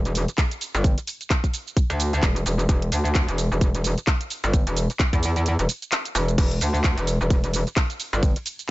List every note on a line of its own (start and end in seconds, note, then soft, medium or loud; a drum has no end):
0.00 0.26 E1 loud
0.05 closed hi-hat medium
0.05 shaker soft
0.15 open hi-hat loud
0.15 shaker medium
0.28 closed hi-hat soft
0.28 shaker soft
0.38 kick loud
0.38 clap loud
0.38 closed hi-hat medium
0.38 shaker soft
0.51 closed hi-hat medium
0.51 shaker soft
0.61 open hi-hat medium
0.61 shaker medium
0.75 0.96 G1 loud
0.75 closed hi-hat soft
0.75 shaker soft
0.84 kick loud
0.84 closed hi-hat medium
0.84 shaker soft
0.98 closed hi-hat medium
0.98 shaker soft
1.07 open hi-hat loud
1.07 shaker medium
1.21 closed hi-hat soft
1.21 shaker soft
1.30 kick loud
1.30 clap loud
1.30 closed hi-hat medium
1.30 shaker soft
1.44 kick medium
1.44 closed hi-hat medium
1.44 shaker soft
1.54 open hi-hat medium
1.54 shaker medium
1.67 shaker soft
1.77 kick loud
1.77 closed hi-hat medium
1.77 shaker soft
1.90 2.21 D2 loud
1.90 closed hi-hat medium
1.90 shaker soft
2.00 open hi-hat loud
2.00 shaker medium
2.13 closed hi-hat soft
2.13 shaker soft
2.23 2.44 E1 medium
2.23 kick loud
2.23 clap loud
2.23 closed hi-hat medium
2.23 shaker soft
2.36 closed hi-hat medium
2.36 shaker soft
2.46 2.67 E1 loud
2.46 open hi-hat medium
2.46 shaker medium
2.59 closed hi-hat soft
2.59 shaker soft
2.69 2.90 E1 loud
2.69 kick loud
2.69 closed hi-hat medium
2.69 shaker soft
2.82 closed hi-hat medium
2.92 3.26 D2 medium
2.92 open hi-hat loud
2.92 shaker medium
3.05 closed hi-hat soft
3.05 shaker soft
3.15 kick loud
3.15 clap loud
3.15 closed hi-hat medium
3.15 shaker soft
3.28 3.49 E1 loud
3.28 closed hi-hat medium
3.28 shaker soft
3.38 open hi-hat medium
3.38 shaker medium
3.52 3.96 E1 loud
3.52 shaker soft
3.61 kick loud
3.61 closed hi-hat medium
3.61 shaker soft
3.75 closed hi-hat medium
3.75 shaker soft
3.84 open hi-hat loud
3.84 shaker medium
3.98 closed hi-hat soft
3.98 shaker soft
4.07 kick loud
4.07 clap loud
4.07 closed hi-hat medium
4.07 shaker soft
4.21 closed hi-hat medium
4.21 shaker soft
4.30 open hi-hat medium
4.30 shaker medium
4.44 4.65 G1 loud
4.44 closed hi-hat soft
4.44 shaker soft
4.53 kick loud
4.53 closed hi-hat medium
4.53 shaker soft
4.67 4.88 E1 loud
4.67 closed hi-hat medium
4.67 shaker soft
4.77 open hi-hat loud
4.77 shaker medium
4.90 closed hi-hat soft
4.90 shaker soft
4.99 kick loud
4.99 clap loud
4.99 closed hi-hat medium
4.99 shaker soft
5.13 5.57 E2 loud
5.13 kick medium
5.13 closed hi-hat medium
5.13 shaker soft
5.23 open hi-hat medium
5.23 shaker medium
5.36 closed hi-hat soft
5.36 shaker soft
5.46 closed hi-hat medium
5.46 shaker soft
5.59 5.67 E1 loud
5.59 closed hi-hat medium
5.59 shaker soft
5.69 open hi-hat loud
5.69 shaker medium
5.82 closed hi-hat soft
5.82 shaker soft
5.92 clap loud
5.92 closed hi-hat medium
5.92 shaker soft
6.05 closed hi-hat medium
6.05 shaker soft
6.15 6.37 E1 loud
6.15 open hi-hat medium
6.15 shaker medium
6.28 closed hi-hat soft
6.28 shaker soft
6.38 6.60 E1 loud
6.38 kick loud
6.38 closed hi-hat medium
6.38 crash medium
6.38 ride medium
6.38 shaker soft
6.51 closed hi-hat medium
6.61 6.96 D2 medium
6.61 open hi-hat loud
6.61 shaker medium
6.74 closed hi-hat soft
6.74 shaker soft
6.84 kick loud
6.84 clap loud
6.84 closed hi-hat medium
6.84 ride medium
6.84 shaker soft
6.98 7.19 E1 loud
6.98 closed hi-hat medium
6.98 shaker soft
7.07 open hi-hat medium
7.07 shaker medium
7.21 7.65 E1 loud
7.21 shaker soft
7.30 kick loud
7.30 closed hi-hat medium
7.30 ride medium
7.30 shaker soft
7.44 closed hi-hat medium
7.44 shaker soft
7.54 open hi-hat loud
7.54 shaker medium
7.67 closed hi-hat soft
7.67 shaker soft
7.76 kick loud
7.76 clap loud
7.76 closed hi-hat medium
7.76 ride medium
7.76 shaker soft
7.90 closed hi-hat medium
7.90 shaker soft
8.00 open hi-hat medium
8.00 shaker medium
8.13 8.34 G1 loud
8.13 closed hi-hat soft
8.13 shaker soft
8.23 kick loud
8.23 closed hi-hat medium
8.23 ride medium
8.23 shaker soft
8.36 closed hi-hat medium
8.36 shaker soft
8.46 open hi-hat loud
8.46 shaker medium
8.59 closed hi-hat soft
8.59 shaker soft